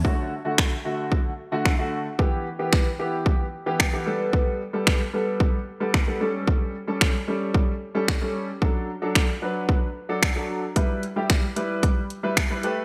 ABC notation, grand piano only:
X:1
M:4/4
L:1/16
Q:1/4=112
K:Dmix
V:1 name="Grand piano"
[D,A,F]2 z [D,A,F]2 z [D,A,F]3 z2 [D,A,F] z [D,A,F]2 z | [E,B,G]2 z [E,B,G]2 z [E,B,G]3 z2 [E,B,G] z [E,B,G] [G,B,A]2- | [G,B,A]2 z [G,B,A]2 z [G,B,A]3 z2 [G,B,A] z [G,B,A] [G,^CA]2- | [G,^CA]2 z [G,CA]2 z [G,CA]3 z2 [G,CA] z [G,CA]2 z |
[F,DA]2 z [F,DA]2 z [F,DB]3 z2 [F,DA] z [F,DA]2 z | [G,EB]2 z [G,EG]2 z [G,EB]3 z2 [G,EB] z [G,EB] [A,GB]2 |]